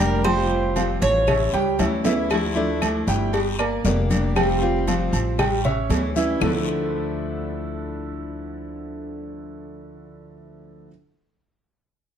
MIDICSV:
0, 0, Header, 1, 7, 480
1, 0, Start_track
1, 0, Key_signature, -1, "minor"
1, 0, Tempo, 513259
1, 231, Time_signature, 4, 2, 24, 8
1, 11386, End_track
2, 0, Start_track
2, 0, Title_t, "Cuban tres"
2, 0, Program_c, 0, 25
2, 0, Note_on_c, 0, 70, 82
2, 214, Note_off_c, 0, 70, 0
2, 228, Note_on_c, 0, 72, 98
2, 951, Note_off_c, 0, 72, 0
2, 955, Note_on_c, 0, 73, 104
2, 1638, Note_off_c, 0, 73, 0
2, 11386, End_track
3, 0, Start_track
3, 0, Title_t, "Grand piano"
3, 0, Program_c, 1, 0
3, 0, Note_on_c, 1, 55, 96
3, 0, Note_on_c, 1, 67, 93
3, 0, Note_on_c, 1, 79, 96
3, 187, Note_off_c, 1, 55, 0
3, 188, Note_off_c, 1, 67, 0
3, 190, Note_off_c, 1, 79, 0
3, 230, Note_on_c, 1, 55, 94
3, 233, Note_on_c, 1, 67, 93
3, 237, Note_on_c, 1, 79, 86
3, 625, Note_off_c, 1, 55, 0
3, 626, Note_off_c, 1, 67, 0
3, 629, Note_off_c, 1, 79, 0
3, 713, Note_on_c, 1, 60, 67
3, 715, Note_on_c, 1, 72, 74
3, 718, Note_on_c, 1, 77, 71
3, 1107, Note_off_c, 1, 60, 0
3, 1108, Note_off_c, 1, 72, 0
3, 1110, Note_off_c, 1, 77, 0
3, 1193, Note_on_c, 1, 61, 70
3, 1196, Note_on_c, 1, 73, 70
3, 1199, Note_on_c, 1, 76, 78
3, 1390, Note_off_c, 1, 61, 0
3, 1392, Note_off_c, 1, 73, 0
3, 1394, Note_off_c, 1, 76, 0
3, 1432, Note_on_c, 1, 55, 97
3, 1434, Note_on_c, 1, 67, 105
3, 1437, Note_on_c, 1, 79, 102
3, 1630, Note_off_c, 1, 55, 0
3, 1631, Note_off_c, 1, 67, 0
3, 1633, Note_off_c, 1, 79, 0
3, 1674, Note_on_c, 1, 61, 67
3, 1677, Note_on_c, 1, 73, 68
3, 1679, Note_on_c, 1, 76, 72
3, 1871, Note_off_c, 1, 61, 0
3, 1873, Note_off_c, 1, 73, 0
3, 1874, Note_off_c, 1, 76, 0
3, 1915, Note_on_c, 1, 52, 92
3, 1918, Note_on_c, 1, 64, 91
3, 1922, Note_on_c, 1, 76, 85
3, 2113, Note_off_c, 1, 52, 0
3, 2114, Note_off_c, 1, 64, 0
3, 2116, Note_off_c, 1, 76, 0
3, 2393, Note_on_c, 1, 57, 70
3, 2395, Note_on_c, 1, 69, 71
3, 2398, Note_on_c, 1, 74, 72
3, 2788, Note_off_c, 1, 57, 0
3, 2790, Note_off_c, 1, 69, 0
3, 2792, Note_off_c, 1, 74, 0
3, 2877, Note_on_c, 1, 55, 91
3, 2880, Note_on_c, 1, 67, 88
3, 2882, Note_on_c, 1, 79, 94
3, 3272, Note_off_c, 1, 55, 0
3, 3273, Note_off_c, 1, 67, 0
3, 3275, Note_off_c, 1, 79, 0
3, 3355, Note_on_c, 1, 58, 90
3, 3357, Note_on_c, 1, 70, 93
3, 3359, Note_on_c, 1, 74, 95
3, 3553, Note_off_c, 1, 58, 0
3, 3554, Note_off_c, 1, 70, 0
3, 3556, Note_off_c, 1, 74, 0
3, 3597, Note_on_c, 1, 58, 73
3, 3600, Note_on_c, 1, 70, 74
3, 3602, Note_on_c, 1, 74, 67
3, 3992, Note_off_c, 1, 58, 0
3, 3994, Note_off_c, 1, 70, 0
3, 3995, Note_off_c, 1, 74, 0
3, 4076, Note_on_c, 1, 55, 90
3, 4078, Note_on_c, 1, 67, 92
3, 4081, Note_on_c, 1, 79, 83
3, 4471, Note_off_c, 1, 55, 0
3, 4473, Note_off_c, 1, 67, 0
3, 4474, Note_off_c, 1, 79, 0
3, 4556, Note_on_c, 1, 60, 69
3, 4558, Note_on_c, 1, 72, 72
3, 4561, Note_on_c, 1, 77, 68
3, 4952, Note_off_c, 1, 60, 0
3, 4953, Note_off_c, 1, 72, 0
3, 4955, Note_off_c, 1, 77, 0
3, 5038, Note_on_c, 1, 55, 83
3, 5041, Note_on_c, 1, 67, 81
3, 5043, Note_on_c, 1, 79, 91
3, 5236, Note_off_c, 1, 55, 0
3, 5238, Note_off_c, 1, 67, 0
3, 5239, Note_off_c, 1, 79, 0
3, 5281, Note_on_c, 1, 61, 92
3, 5283, Note_on_c, 1, 73, 82
3, 5285, Note_on_c, 1, 76, 91
3, 5675, Note_off_c, 1, 61, 0
3, 5676, Note_off_c, 1, 73, 0
3, 5677, Note_off_c, 1, 76, 0
3, 5760, Note_on_c, 1, 52, 86
3, 5763, Note_on_c, 1, 64, 93
3, 5767, Note_on_c, 1, 76, 86
3, 5958, Note_off_c, 1, 52, 0
3, 5959, Note_off_c, 1, 64, 0
3, 5962, Note_off_c, 1, 76, 0
3, 5994, Note_on_c, 1, 50, 98
3, 5998, Note_on_c, 1, 57, 80
3, 5999, Note_on_c, 1, 62, 88
3, 6001, Note_on_c, 1, 64, 92
3, 6004, Note_on_c, 1, 69, 102
3, 10166, Note_off_c, 1, 50, 0
3, 10170, Note_off_c, 1, 57, 0
3, 10171, Note_off_c, 1, 62, 0
3, 10173, Note_off_c, 1, 64, 0
3, 10176, Note_off_c, 1, 69, 0
3, 11386, End_track
4, 0, Start_track
4, 0, Title_t, "Steel-string acoustic guitar"
4, 0, Program_c, 2, 25
4, 0, Note_on_c, 2, 62, 75
4, 0, Note_on_c, 2, 67, 66
4, 4, Note_on_c, 2, 58, 66
4, 9, Note_on_c, 2, 55, 62
4, 222, Note_off_c, 2, 67, 0
4, 225, Note_off_c, 2, 55, 0
4, 225, Note_off_c, 2, 62, 0
4, 228, Note_off_c, 2, 58, 0
4, 228, Note_on_c, 2, 53, 72
4, 236, Note_on_c, 2, 55, 90
4, 243, Note_on_c, 2, 60, 81
4, 247, Note_on_c, 2, 65, 91
4, 696, Note_off_c, 2, 53, 0
4, 705, Note_off_c, 2, 55, 0
4, 707, Note_on_c, 2, 53, 55
4, 709, Note_off_c, 2, 60, 0
4, 710, Note_off_c, 2, 65, 0
4, 714, Note_on_c, 2, 55, 55
4, 719, Note_on_c, 2, 60, 55
4, 724, Note_on_c, 2, 65, 65
4, 1179, Note_off_c, 2, 55, 0
4, 1181, Note_off_c, 2, 53, 0
4, 1187, Note_off_c, 2, 60, 0
4, 1190, Note_off_c, 2, 65, 0
4, 1670, Note_on_c, 2, 52, 50
4, 1678, Note_on_c, 2, 55, 52
4, 1683, Note_on_c, 2, 61, 57
4, 1690, Note_on_c, 2, 64, 60
4, 1897, Note_off_c, 2, 64, 0
4, 1903, Note_off_c, 2, 52, 0
4, 1907, Note_off_c, 2, 55, 0
4, 1908, Note_off_c, 2, 61, 0
4, 1908, Note_on_c, 2, 64, 70
4, 1919, Note_on_c, 2, 61, 71
4, 1927, Note_on_c, 2, 55, 59
4, 2143, Note_off_c, 2, 64, 0
4, 2148, Note_off_c, 2, 61, 0
4, 2150, Note_on_c, 2, 50, 85
4, 2152, Note_off_c, 2, 55, 0
4, 2153, Note_on_c, 2, 53, 69
4, 2159, Note_on_c, 2, 57, 83
4, 2163, Note_on_c, 2, 62, 91
4, 2167, Note_on_c, 2, 64, 87
4, 2374, Note_off_c, 2, 64, 0
4, 2381, Note_off_c, 2, 62, 0
4, 2384, Note_off_c, 2, 50, 0
4, 2385, Note_off_c, 2, 53, 0
4, 2386, Note_on_c, 2, 64, 83
4, 2388, Note_off_c, 2, 57, 0
4, 2393, Note_on_c, 2, 62, 79
4, 2400, Note_on_c, 2, 57, 74
4, 2406, Note_on_c, 2, 53, 55
4, 2622, Note_off_c, 2, 53, 0
4, 2622, Note_off_c, 2, 64, 0
4, 2625, Note_off_c, 2, 62, 0
4, 2629, Note_off_c, 2, 57, 0
4, 2633, Note_on_c, 2, 53, 54
4, 2641, Note_on_c, 2, 57, 53
4, 2646, Note_on_c, 2, 62, 60
4, 2650, Note_on_c, 2, 64, 64
4, 3106, Note_off_c, 2, 53, 0
4, 3107, Note_off_c, 2, 62, 0
4, 3110, Note_off_c, 2, 57, 0
4, 3115, Note_off_c, 2, 64, 0
4, 3590, Note_on_c, 2, 55, 51
4, 3598, Note_on_c, 2, 58, 60
4, 3605, Note_on_c, 2, 62, 56
4, 3608, Note_on_c, 2, 67, 64
4, 3821, Note_off_c, 2, 67, 0
4, 3825, Note_off_c, 2, 55, 0
4, 3827, Note_off_c, 2, 62, 0
4, 3829, Note_off_c, 2, 58, 0
4, 3833, Note_on_c, 2, 67, 74
4, 3838, Note_on_c, 2, 62, 65
4, 3845, Note_on_c, 2, 58, 66
4, 3850, Note_on_c, 2, 55, 56
4, 4067, Note_off_c, 2, 67, 0
4, 4068, Note_off_c, 2, 55, 0
4, 4069, Note_off_c, 2, 62, 0
4, 4071, Note_on_c, 2, 53, 75
4, 4073, Note_off_c, 2, 58, 0
4, 4079, Note_on_c, 2, 55, 76
4, 4083, Note_on_c, 2, 60, 87
4, 4089, Note_on_c, 2, 65, 87
4, 4302, Note_off_c, 2, 65, 0
4, 4306, Note_off_c, 2, 53, 0
4, 4310, Note_off_c, 2, 55, 0
4, 4312, Note_off_c, 2, 60, 0
4, 4313, Note_on_c, 2, 65, 79
4, 4323, Note_on_c, 2, 60, 74
4, 4330, Note_on_c, 2, 55, 59
4, 4547, Note_off_c, 2, 65, 0
4, 4550, Note_off_c, 2, 55, 0
4, 4552, Note_off_c, 2, 60, 0
4, 4555, Note_on_c, 2, 53, 52
4, 4561, Note_on_c, 2, 55, 59
4, 4566, Note_on_c, 2, 60, 64
4, 4574, Note_on_c, 2, 65, 60
4, 5028, Note_off_c, 2, 53, 0
4, 5031, Note_off_c, 2, 55, 0
4, 5034, Note_off_c, 2, 60, 0
4, 5038, Note_off_c, 2, 65, 0
4, 5519, Note_on_c, 2, 52, 53
4, 5527, Note_on_c, 2, 55, 48
4, 5533, Note_on_c, 2, 61, 53
4, 5535, Note_on_c, 2, 64, 60
4, 5747, Note_off_c, 2, 64, 0
4, 5751, Note_off_c, 2, 52, 0
4, 5755, Note_off_c, 2, 55, 0
4, 5756, Note_off_c, 2, 61, 0
4, 5758, Note_on_c, 2, 64, 71
4, 5767, Note_on_c, 2, 61, 67
4, 5774, Note_on_c, 2, 55, 62
4, 5990, Note_off_c, 2, 64, 0
4, 5995, Note_off_c, 2, 61, 0
4, 5998, Note_off_c, 2, 55, 0
4, 5998, Note_on_c, 2, 50, 82
4, 6004, Note_on_c, 2, 53, 80
4, 6012, Note_on_c, 2, 57, 78
4, 6019, Note_on_c, 2, 62, 80
4, 6025, Note_on_c, 2, 64, 79
4, 10208, Note_off_c, 2, 50, 0
4, 10214, Note_off_c, 2, 53, 0
4, 10222, Note_off_c, 2, 57, 0
4, 10228, Note_off_c, 2, 62, 0
4, 10234, Note_off_c, 2, 64, 0
4, 11386, End_track
5, 0, Start_track
5, 0, Title_t, "Upright bass"
5, 0, Program_c, 3, 32
5, 0, Note_on_c, 3, 29, 96
5, 889, Note_off_c, 3, 29, 0
5, 950, Note_on_c, 3, 33, 102
5, 1399, Note_off_c, 3, 33, 0
5, 1428, Note_on_c, 3, 37, 75
5, 1655, Note_off_c, 3, 37, 0
5, 1671, Note_on_c, 3, 38, 92
5, 2814, Note_off_c, 3, 38, 0
5, 2871, Note_on_c, 3, 31, 93
5, 3558, Note_off_c, 3, 31, 0
5, 3593, Note_on_c, 3, 29, 88
5, 4736, Note_off_c, 3, 29, 0
5, 4793, Note_on_c, 3, 33, 101
5, 5480, Note_off_c, 3, 33, 0
5, 5513, Note_on_c, 3, 38, 97
5, 5941, Note_off_c, 3, 38, 0
5, 5994, Note_on_c, 3, 38, 89
5, 10166, Note_off_c, 3, 38, 0
5, 11386, End_track
6, 0, Start_track
6, 0, Title_t, "Muted steel-string acoustic guitar strokes"
6, 1188, Note_on_c, 9, 29, 65
6, 1281, Note_off_c, 9, 29, 0
6, 3113, Note_on_c, 9, 29, 65
6, 3206, Note_off_c, 9, 29, 0
6, 5041, Note_on_c, 9, 29, 68
6, 5135, Note_off_c, 9, 29, 0
6, 11386, End_track
7, 0, Start_track
7, 0, Title_t, "Drums"
7, 230, Note_on_c, 9, 56, 100
7, 230, Note_on_c, 9, 74, 70
7, 232, Note_on_c, 9, 63, 37
7, 232, Note_on_c, 9, 68, 106
7, 234, Note_on_c, 9, 75, 61
7, 323, Note_off_c, 9, 56, 0
7, 324, Note_off_c, 9, 74, 0
7, 325, Note_off_c, 9, 63, 0
7, 326, Note_off_c, 9, 68, 0
7, 327, Note_off_c, 9, 75, 0
7, 472, Note_on_c, 9, 63, 33
7, 565, Note_off_c, 9, 63, 0
7, 709, Note_on_c, 9, 73, 75
7, 711, Note_on_c, 9, 66, 57
7, 711, Note_on_c, 9, 68, 82
7, 713, Note_on_c, 9, 63, 88
7, 716, Note_on_c, 9, 56, 73
7, 803, Note_off_c, 9, 73, 0
7, 805, Note_off_c, 9, 66, 0
7, 805, Note_off_c, 9, 68, 0
7, 807, Note_off_c, 9, 63, 0
7, 809, Note_off_c, 9, 56, 0
7, 951, Note_on_c, 9, 73, 65
7, 952, Note_on_c, 9, 68, 76
7, 957, Note_on_c, 9, 63, 35
7, 1045, Note_off_c, 9, 68, 0
7, 1045, Note_off_c, 9, 73, 0
7, 1051, Note_off_c, 9, 63, 0
7, 1190, Note_on_c, 9, 74, 79
7, 1194, Note_on_c, 9, 56, 111
7, 1196, Note_on_c, 9, 63, 39
7, 1196, Note_on_c, 9, 64, 97
7, 1196, Note_on_c, 9, 68, 98
7, 1196, Note_on_c, 9, 75, 65
7, 1284, Note_off_c, 9, 74, 0
7, 1288, Note_off_c, 9, 56, 0
7, 1289, Note_off_c, 9, 75, 0
7, 1290, Note_off_c, 9, 63, 0
7, 1290, Note_off_c, 9, 64, 0
7, 1290, Note_off_c, 9, 68, 0
7, 1436, Note_on_c, 9, 56, 76
7, 1437, Note_on_c, 9, 63, 38
7, 1529, Note_off_c, 9, 56, 0
7, 1531, Note_off_c, 9, 63, 0
7, 1673, Note_on_c, 9, 73, 72
7, 1676, Note_on_c, 9, 56, 74
7, 1677, Note_on_c, 9, 65, 103
7, 1677, Note_on_c, 9, 68, 85
7, 1679, Note_on_c, 9, 63, 92
7, 1767, Note_off_c, 9, 73, 0
7, 1770, Note_off_c, 9, 56, 0
7, 1770, Note_off_c, 9, 65, 0
7, 1770, Note_off_c, 9, 68, 0
7, 1773, Note_off_c, 9, 63, 0
7, 1914, Note_on_c, 9, 73, 76
7, 1915, Note_on_c, 9, 66, 111
7, 1918, Note_on_c, 9, 63, 74
7, 2007, Note_off_c, 9, 73, 0
7, 2008, Note_off_c, 9, 66, 0
7, 2012, Note_off_c, 9, 63, 0
7, 2156, Note_on_c, 9, 68, 107
7, 2156, Note_on_c, 9, 74, 69
7, 2158, Note_on_c, 9, 56, 100
7, 2158, Note_on_c, 9, 75, 60
7, 2162, Note_on_c, 9, 63, 38
7, 2249, Note_off_c, 9, 74, 0
7, 2250, Note_off_c, 9, 68, 0
7, 2251, Note_off_c, 9, 56, 0
7, 2252, Note_off_c, 9, 75, 0
7, 2256, Note_off_c, 9, 63, 0
7, 2401, Note_on_c, 9, 63, 33
7, 2495, Note_off_c, 9, 63, 0
7, 2634, Note_on_c, 9, 66, 57
7, 2634, Note_on_c, 9, 68, 107
7, 2636, Note_on_c, 9, 75, 75
7, 2637, Note_on_c, 9, 73, 73
7, 2638, Note_on_c, 9, 56, 71
7, 2639, Note_on_c, 9, 63, 94
7, 2728, Note_off_c, 9, 66, 0
7, 2728, Note_off_c, 9, 68, 0
7, 2730, Note_off_c, 9, 75, 0
7, 2731, Note_off_c, 9, 56, 0
7, 2731, Note_off_c, 9, 73, 0
7, 2733, Note_off_c, 9, 63, 0
7, 2876, Note_on_c, 9, 56, 73
7, 2878, Note_on_c, 9, 73, 70
7, 2970, Note_off_c, 9, 56, 0
7, 2971, Note_off_c, 9, 73, 0
7, 3117, Note_on_c, 9, 68, 83
7, 3119, Note_on_c, 9, 74, 74
7, 3120, Note_on_c, 9, 63, 37
7, 3123, Note_on_c, 9, 56, 110
7, 3210, Note_off_c, 9, 68, 0
7, 3212, Note_off_c, 9, 74, 0
7, 3214, Note_off_c, 9, 63, 0
7, 3216, Note_off_c, 9, 56, 0
7, 3357, Note_on_c, 9, 75, 71
7, 3361, Note_on_c, 9, 68, 96
7, 3363, Note_on_c, 9, 63, 38
7, 3451, Note_off_c, 9, 75, 0
7, 3455, Note_off_c, 9, 68, 0
7, 3457, Note_off_c, 9, 63, 0
7, 3597, Note_on_c, 9, 73, 72
7, 3601, Note_on_c, 9, 63, 95
7, 3601, Note_on_c, 9, 66, 86
7, 3603, Note_on_c, 9, 56, 71
7, 3690, Note_off_c, 9, 73, 0
7, 3695, Note_off_c, 9, 63, 0
7, 3695, Note_off_c, 9, 66, 0
7, 3696, Note_off_c, 9, 56, 0
7, 3840, Note_on_c, 9, 68, 76
7, 3840, Note_on_c, 9, 73, 80
7, 3841, Note_on_c, 9, 63, 86
7, 3842, Note_on_c, 9, 56, 72
7, 3933, Note_off_c, 9, 73, 0
7, 3934, Note_off_c, 9, 63, 0
7, 3934, Note_off_c, 9, 68, 0
7, 3935, Note_off_c, 9, 56, 0
7, 4080, Note_on_c, 9, 56, 96
7, 4080, Note_on_c, 9, 74, 64
7, 4080, Note_on_c, 9, 75, 73
7, 4082, Note_on_c, 9, 68, 109
7, 4174, Note_off_c, 9, 56, 0
7, 4174, Note_off_c, 9, 74, 0
7, 4174, Note_off_c, 9, 75, 0
7, 4176, Note_off_c, 9, 68, 0
7, 4321, Note_on_c, 9, 63, 32
7, 4415, Note_off_c, 9, 63, 0
7, 4559, Note_on_c, 9, 63, 88
7, 4560, Note_on_c, 9, 73, 80
7, 4562, Note_on_c, 9, 66, 55
7, 4562, Note_on_c, 9, 68, 89
7, 4564, Note_on_c, 9, 56, 75
7, 4653, Note_off_c, 9, 63, 0
7, 4653, Note_off_c, 9, 73, 0
7, 4656, Note_off_c, 9, 66, 0
7, 4656, Note_off_c, 9, 68, 0
7, 4658, Note_off_c, 9, 56, 0
7, 4799, Note_on_c, 9, 73, 69
7, 4800, Note_on_c, 9, 63, 38
7, 4801, Note_on_c, 9, 68, 80
7, 4893, Note_off_c, 9, 63, 0
7, 4893, Note_off_c, 9, 73, 0
7, 4895, Note_off_c, 9, 68, 0
7, 5041, Note_on_c, 9, 56, 116
7, 5041, Note_on_c, 9, 63, 39
7, 5041, Note_on_c, 9, 64, 86
7, 5041, Note_on_c, 9, 68, 100
7, 5041, Note_on_c, 9, 74, 73
7, 5041, Note_on_c, 9, 75, 71
7, 5134, Note_off_c, 9, 56, 0
7, 5134, Note_off_c, 9, 63, 0
7, 5134, Note_off_c, 9, 64, 0
7, 5134, Note_off_c, 9, 68, 0
7, 5135, Note_off_c, 9, 74, 0
7, 5135, Note_off_c, 9, 75, 0
7, 5281, Note_on_c, 9, 56, 78
7, 5284, Note_on_c, 9, 63, 35
7, 5284, Note_on_c, 9, 64, 83
7, 5375, Note_off_c, 9, 56, 0
7, 5378, Note_off_c, 9, 63, 0
7, 5378, Note_off_c, 9, 64, 0
7, 5520, Note_on_c, 9, 56, 72
7, 5520, Note_on_c, 9, 63, 98
7, 5521, Note_on_c, 9, 73, 75
7, 5522, Note_on_c, 9, 66, 88
7, 5522, Note_on_c, 9, 68, 83
7, 5613, Note_off_c, 9, 63, 0
7, 5614, Note_off_c, 9, 56, 0
7, 5614, Note_off_c, 9, 73, 0
7, 5615, Note_off_c, 9, 66, 0
7, 5615, Note_off_c, 9, 68, 0
7, 5761, Note_on_c, 9, 63, 70
7, 5761, Note_on_c, 9, 73, 75
7, 5854, Note_off_c, 9, 63, 0
7, 5854, Note_off_c, 9, 73, 0
7, 5998, Note_on_c, 9, 61, 105
7, 5999, Note_on_c, 9, 64, 105
7, 6000, Note_on_c, 9, 75, 102
7, 6001, Note_on_c, 9, 74, 89
7, 6002, Note_on_c, 9, 66, 97
7, 6092, Note_off_c, 9, 61, 0
7, 6093, Note_off_c, 9, 64, 0
7, 6093, Note_off_c, 9, 75, 0
7, 6094, Note_off_c, 9, 74, 0
7, 6096, Note_off_c, 9, 66, 0
7, 11386, End_track
0, 0, End_of_file